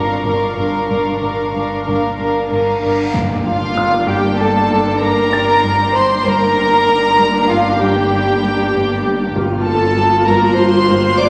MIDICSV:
0, 0, Header, 1, 14, 480
1, 0, Start_track
1, 0, Key_signature, -2, "minor"
1, 0, Tempo, 641026
1, 2356, Time_signature, 5, 2, 24, 8
1, 2826, Tempo, 624350
1, 5226, Tempo, 614754
1, 8657, End_track
2, 0, Start_track
2, 0, Title_t, "Felt piano"
2, 0, Program_c, 0, 0
2, 0, Control_c, 0, 64, 127
2, 0, Note_on_c, 0, 82, 26
2, 0, Note_on_c, 0, 94, 36
2, 1123, Note_off_c, 0, 82, 0
2, 1123, Note_off_c, 0, 94, 0
2, 2371, Control_c, 0, 64, 0
2, 2480, Control_c, 0, 64, 127
2, 2827, Note_on_c, 0, 89, 32
2, 4021, Note_on_c, 0, 93, 39
2, 4232, Note_off_c, 0, 89, 0
2, 5436, Note_off_c, 0, 93, 0
2, 5697, Note_on_c, 0, 96, 39
2, 7113, Note_off_c, 0, 96, 0
2, 7165, Control_c, 0, 64, 0
2, 7300, Control_c, 0, 64, 127
2, 8657, End_track
3, 0, Start_track
3, 0, Title_t, "Violin section"
3, 0, Program_c, 1, 48
3, 0, Note_on_c, 1, 82, 45
3, 0, Note_on_c, 1, 84, 46
3, 0, Note_on_c, 1, 85, 38
3, 1605, Note_off_c, 1, 84, 0
3, 2082, Note_off_c, 1, 82, 0
3, 2086, Note_off_c, 1, 85, 0
3, 2362, Note_on_c, 1, 79, 40
3, 2362, Note_on_c, 1, 86, 35
3, 2830, Note_on_c, 1, 84, 39
3, 5862, Note_off_c, 1, 84, 0
3, 5862, Note_on_c, 1, 83, 39
3, 5919, Note_off_c, 1, 86, 0
3, 6882, Note_off_c, 1, 83, 0
3, 6883, Note_off_c, 1, 79, 0
3, 7153, Note_on_c, 1, 89, 43
3, 7632, Note_on_c, 1, 90, 46
3, 8112, Note_on_c, 1, 96, 49
3, 8657, Note_off_c, 1, 89, 0
3, 8657, Note_off_c, 1, 90, 0
3, 8657, Note_off_c, 1, 96, 0
3, 8657, End_track
4, 0, Start_track
4, 0, Title_t, "Violin section"
4, 0, Program_c, 2, 48
4, 0, Note_on_c, 2, 77, 40
4, 180, Note_off_c, 2, 77, 0
4, 189, Note_on_c, 2, 77, 34
4, 419, Note_off_c, 2, 77, 0
4, 428, Note_on_c, 2, 77, 34
4, 663, Note_off_c, 2, 77, 0
4, 672, Note_on_c, 2, 77, 31
4, 903, Note_off_c, 2, 77, 0
4, 912, Note_on_c, 2, 77, 30
4, 1148, Note_off_c, 2, 77, 0
4, 1165, Note_on_c, 2, 77, 29
4, 1393, Note_off_c, 2, 77, 0
4, 1402, Note_on_c, 2, 77, 34
4, 1630, Note_off_c, 2, 77, 0
4, 1639, Note_on_c, 2, 77, 28
4, 1869, Note_off_c, 2, 77, 0
4, 1878, Note_on_c, 2, 77, 31
4, 2109, Note_off_c, 2, 77, 0
4, 2118, Note_on_c, 2, 77, 26
4, 2352, Note_off_c, 2, 77, 0
4, 2593, Note_on_c, 2, 77, 61
4, 3035, Note_off_c, 2, 77, 0
4, 3062, Note_on_c, 2, 79, 50
4, 3301, Note_on_c, 2, 81, 61
4, 3303, Note_off_c, 2, 79, 0
4, 3772, Note_on_c, 2, 82, 76
4, 3780, Note_off_c, 2, 81, 0
4, 4485, Note_off_c, 2, 82, 0
4, 4499, Note_on_c, 2, 84, 65
4, 4743, Note_on_c, 2, 82, 80
4, 4744, Note_off_c, 2, 84, 0
4, 5705, Note_off_c, 2, 82, 0
4, 5710, Note_on_c, 2, 77, 64
4, 5945, Note_on_c, 2, 79, 58
4, 5948, Note_off_c, 2, 77, 0
4, 7148, Note_off_c, 2, 79, 0
4, 7381, Note_on_c, 2, 81, 75
4, 7834, Note_off_c, 2, 81, 0
4, 7856, Note_on_c, 2, 82, 63
4, 8101, Note_on_c, 2, 84, 79
4, 8102, Note_off_c, 2, 82, 0
4, 8581, Note_on_c, 2, 86, 97
4, 8583, Note_off_c, 2, 84, 0
4, 8657, Note_off_c, 2, 86, 0
4, 8657, End_track
5, 0, Start_track
5, 0, Title_t, "Violin section"
5, 0, Program_c, 3, 48
5, 0, Note_on_c, 3, 70, 36
5, 181, Note_off_c, 3, 70, 0
5, 190, Note_on_c, 3, 70, 31
5, 424, Note_off_c, 3, 70, 0
5, 433, Note_on_c, 3, 70, 34
5, 657, Note_off_c, 3, 70, 0
5, 666, Note_on_c, 3, 70, 33
5, 895, Note_off_c, 3, 70, 0
5, 904, Note_on_c, 3, 70, 27
5, 1139, Note_off_c, 3, 70, 0
5, 1148, Note_on_c, 3, 70, 28
5, 1382, Note_off_c, 3, 70, 0
5, 1391, Note_on_c, 3, 70, 27
5, 1621, Note_off_c, 3, 70, 0
5, 1630, Note_on_c, 3, 70, 27
5, 1868, Note_off_c, 3, 70, 0
5, 1875, Note_on_c, 3, 70, 29
5, 2111, Note_off_c, 3, 70, 0
5, 2122, Note_on_c, 3, 70, 24
5, 2354, Note_off_c, 3, 70, 0
5, 2599, Note_on_c, 3, 65, 52
5, 3038, Note_off_c, 3, 65, 0
5, 3059, Note_on_c, 3, 67, 46
5, 3294, Note_on_c, 3, 69, 47
5, 3301, Note_off_c, 3, 67, 0
5, 3766, Note_on_c, 3, 70, 52
5, 3776, Note_off_c, 3, 69, 0
5, 4497, Note_off_c, 3, 70, 0
5, 4503, Note_on_c, 3, 72, 52
5, 4738, Note_on_c, 3, 70, 64
5, 4740, Note_off_c, 3, 72, 0
5, 5699, Note_on_c, 3, 65, 51
5, 5703, Note_off_c, 3, 70, 0
5, 5943, Note_off_c, 3, 65, 0
5, 5944, Note_on_c, 3, 67, 48
5, 7124, Note_off_c, 3, 67, 0
5, 7382, Note_on_c, 3, 69, 58
5, 7835, Note_off_c, 3, 69, 0
5, 7866, Note_on_c, 3, 70, 53
5, 8105, Note_on_c, 3, 72, 61
5, 8107, Note_off_c, 3, 70, 0
5, 8575, Note_off_c, 3, 72, 0
5, 8590, Note_on_c, 3, 74, 73
5, 8657, Note_off_c, 3, 74, 0
5, 8657, End_track
6, 0, Start_track
6, 0, Title_t, "Viola section"
6, 0, Program_c, 4, 48
6, 0, Note_on_c, 4, 62, 33
6, 184, Note_off_c, 4, 62, 0
6, 198, Note_on_c, 4, 62, 25
6, 425, Note_off_c, 4, 62, 0
6, 434, Note_on_c, 4, 62, 32
6, 666, Note_off_c, 4, 62, 0
6, 675, Note_on_c, 4, 62, 30
6, 901, Note_off_c, 4, 62, 0
6, 910, Note_on_c, 4, 62, 30
6, 1147, Note_off_c, 4, 62, 0
6, 1156, Note_on_c, 4, 62, 31
6, 1392, Note_off_c, 4, 62, 0
6, 1400, Note_on_c, 4, 62, 31
6, 1631, Note_off_c, 4, 62, 0
6, 1640, Note_on_c, 4, 62, 29
6, 1866, Note_off_c, 4, 62, 0
6, 1875, Note_on_c, 4, 62, 32
6, 2108, Note_off_c, 4, 62, 0
6, 2117, Note_on_c, 4, 62, 28
6, 2348, Note_off_c, 4, 62, 0
6, 2355, Note_on_c, 4, 58, 47
6, 2357, Note_on_c, 4, 62, 47
6, 4715, Note_off_c, 4, 58, 0
6, 4716, Note_off_c, 4, 62, 0
6, 4740, Note_on_c, 4, 58, 45
6, 4741, Note_on_c, 4, 62, 50
6, 7115, Note_off_c, 4, 58, 0
6, 7116, Note_off_c, 4, 62, 0
6, 7147, Note_on_c, 4, 65, 54
6, 7149, Note_on_c, 4, 58, 52
6, 8657, Note_off_c, 4, 58, 0
6, 8657, Note_off_c, 4, 65, 0
6, 8657, End_track
7, 0, Start_track
7, 0, Title_t, "French horn section"
7, 0, Program_c, 5, 60
7, 0, Note_on_c, 5, 58, 34
7, 0, Note_on_c, 5, 62, 31
7, 113, Note_off_c, 5, 62, 0
7, 115, Note_off_c, 5, 58, 0
7, 1395, Note_on_c, 5, 58, 31
7, 1396, Note_on_c, 5, 62, 31
7, 1563, Note_off_c, 5, 58, 0
7, 1563, Note_off_c, 5, 62, 0
7, 8657, End_track
8, 0, Start_track
8, 0, Title_t, "Cello section"
8, 0, Program_c, 6, 48
8, 0, Note_on_c, 6, 43, 43
8, 92, Note_off_c, 6, 43, 0
8, 191, Note_on_c, 6, 43, 33
8, 334, Note_off_c, 6, 43, 0
8, 431, Note_on_c, 6, 55, 30
8, 574, Note_off_c, 6, 55, 0
8, 672, Note_on_c, 6, 43, 43
8, 815, Note_off_c, 6, 43, 0
8, 915, Note_on_c, 6, 55, 27
8, 1059, Note_off_c, 6, 55, 0
8, 1155, Note_on_c, 6, 43, 36
8, 1300, Note_off_c, 6, 43, 0
8, 1395, Note_on_c, 6, 43, 32
8, 1540, Note_off_c, 6, 43, 0
8, 1635, Note_on_c, 6, 55, 27
8, 1779, Note_off_c, 6, 55, 0
8, 1873, Note_on_c, 6, 43, 38
8, 2018, Note_off_c, 6, 43, 0
8, 2116, Note_on_c, 6, 43, 25
8, 2260, Note_off_c, 6, 43, 0
8, 2351, Note_on_c, 6, 43, 52
8, 2494, Note_off_c, 6, 43, 0
8, 2589, Note_on_c, 6, 43, 41
8, 2730, Note_off_c, 6, 43, 0
8, 2821, Note_on_c, 6, 43, 36
8, 2966, Note_off_c, 6, 43, 0
8, 3056, Note_on_c, 6, 43, 57
8, 3202, Note_off_c, 6, 43, 0
8, 3298, Note_on_c, 6, 43, 42
8, 3443, Note_off_c, 6, 43, 0
8, 3538, Note_on_c, 6, 43, 52
8, 3682, Note_off_c, 6, 43, 0
8, 3777, Note_on_c, 6, 43, 47
8, 3922, Note_off_c, 6, 43, 0
8, 4019, Note_on_c, 6, 55, 39
8, 4164, Note_off_c, 6, 55, 0
8, 4257, Note_on_c, 6, 43, 57
8, 4404, Note_off_c, 6, 43, 0
8, 4497, Note_on_c, 6, 43, 40
8, 4645, Note_off_c, 6, 43, 0
8, 4739, Note_on_c, 6, 43, 56
8, 4886, Note_off_c, 6, 43, 0
8, 4978, Note_on_c, 6, 43, 44
8, 5124, Note_off_c, 6, 43, 0
8, 5217, Note_on_c, 6, 43, 39
8, 5365, Note_off_c, 6, 43, 0
8, 5460, Note_on_c, 6, 43, 59
8, 5606, Note_off_c, 6, 43, 0
8, 5700, Note_on_c, 6, 43, 43
8, 5846, Note_off_c, 6, 43, 0
8, 5941, Note_on_c, 6, 43, 58
8, 6088, Note_off_c, 6, 43, 0
8, 6185, Note_on_c, 6, 43, 48
8, 6331, Note_off_c, 6, 43, 0
8, 6425, Note_on_c, 6, 55, 46
8, 6571, Note_off_c, 6, 55, 0
8, 6668, Note_on_c, 6, 43, 61
8, 6812, Note_off_c, 6, 43, 0
8, 6908, Note_on_c, 6, 43, 44
8, 7052, Note_off_c, 6, 43, 0
8, 7149, Note_on_c, 6, 43, 69
8, 7292, Note_off_c, 6, 43, 0
8, 7389, Note_on_c, 6, 43, 49
8, 7533, Note_off_c, 6, 43, 0
8, 7626, Note_on_c, 6, 43, 51
8, 7771, Note_off_c, 6, 43, 0
8, 7866, Note_on_c, 6, 43, 67
8, 8011, Note_off_c, 6, 43, 0
8, 8105, Note_on_c, 6, 43, 50
8, 8249, Note_off_c, 6, 43, 0
8, 8343, Note_on_c, 6, 43, 72
8, 8488, Note_off_c, 6, 43, 0
8, 8584, Note_on_c, 6, 43, 58
8, 8657, Note_off_c, 6, 43, 0
8, 8657, End_track
9, 0, Start_track
9, 0, Title_t, "Cello section"
9, 0, Program_c, 7, 48
9, 187, Note_on_c, 7, 43, 32
9, 247, Note_off_c, 7, 43, 0
9, 430, Note_on_c, 7, 43, 37
9, 490, Note_off_c, 7, 43, 0
9, 667, Note_on_c, 7, 43, 29
9, 727, Note_off_c, 7, 43, 0
9, 908, Note_on_c, 7, 43, 35
9, 968, Note_off_c, 7, 43, 0
9, 1152, Note_on_c, 7, 43, 30
9, 1212, Note_off_c, 7, 43, 0
9, 1395, Note_on_c, 7, 43, 34
9, 1455, Note_off_c, 7, 43, 0
9, 1636, Note_on_c, 7, 43, 32
9, 1696, Note_off_c, 7, 43, 0
9, 1877, Note_on_c, 7, 43, 32
9, 1937, Note_off_c, 7, 43, 0
9, 2119, Note_on_c, 7, 43, 31
9, 2178, Note_off_c, 7, 43, 0
9, 2355, Note_on_c, 7, 43, 48
9, 4715, Note_off_c, 7, 43, 0
9, 4739, Note_on_c, 7, 43, 48
9, 7115, Note_off_c, 7, 43, 0
9, 7145, Note_on_c, 7, 43, 54
9, 8657, Note_off_c, 7, 43, 0
9, 8657, End_track
10, 0, Start_track
10, 0, Title_t, "Timpani"
10, 0, Program_c, 8, 47
10, 7149, Note_on_c, 8, 43, 69
10, 7837, Note_off_c, 8, 43, 0
10, 8657, End_track
11, 0, Start_track
11, 0, Title_t, "Double bass section"
11, 0, Program_c, 10, 48
11, 186, Note_on_c, 10, 31, 36
11, 246, Note_off_c, 10, 31, 0
11, 432, Note_on_c, 10, 31, 31
11, 491, Note_off_c, 10, 31, 0
11, 672, Note_on_c, 10, 31, 34
11, 732, Note_off_c, 10, 31, 0
11, 909, Note_on_c, 10, 31, 32
11, 968, Note_off_c, 10, 31, 0
11, 1150, Note_on_c, 10, 31, 32
11, 1210, Note_off_c, 10, 31, 0
11, 1398, Note_on_c, 10, 31, 30
11, 1458, Note_off_c, 10, 31, 0
11, 1636, Note_on_c, 10, 31, 34
11, 1696, Note_off_c, 10, 31, 0
11, 1877, Note_on_c, 10, 31, 32
11, 1937, Note_off_c, 10, 31, 0
11, 2119, Note_on_c, 10, 31, 29
11, 2179, Note_off_c, 10, 31, 0
11, 2358, Note_on_c, 10, 31, 46
11, 4717, Note_off_c, 10, 31, 0
11, 4742, Note_on_c, 10, 31, 54
11, 7116, Note_off_c, 10, 31, 0
11, 7145, Note_on_c, 10, 31, 59
11, 8657, Note_off_c, 10, 31, 0
11, 8657, End_track
12, 0, Start_track
12, 0, Title_t, "Sub bass"
12, 0, Program_c, 11, 38
12, 0, Note_on_c, 11, 31, 58
12, 2328, Note_off_c, 11, 31, 0
12, 2352, Note_on_c, 11, 31, 65
12, 4714, Note_off_c, 11, 31, 0
12, 4737, Note_on_c, 11, 31, 67
12, 7114, Note_off_c, 11, 31, 0
12, 7145, Note_on_c, 11, 31, 68
12, 8657, Note_off_c, 11, 31, 0
12, 8657, End_track
13, 0, Start_track
13, 0, Title_t, "Impact"
13, 0, Program_c, 12, 103
13, 2353, Note_on_c, 12, 60, 57
13, 4745, Note_off_c, 12, 60, 0
13, 8657, End_track
14, 0, Start_track
14, 0, Title_t, "Reverse cymbal"
14, 0, Program_c, 13, 119
14, 0, Note_on_c, 13, 60, 41
14, 2356, Note_off_c, 13, 60, 0
14, 8657, End_track
0, 0, End_of_file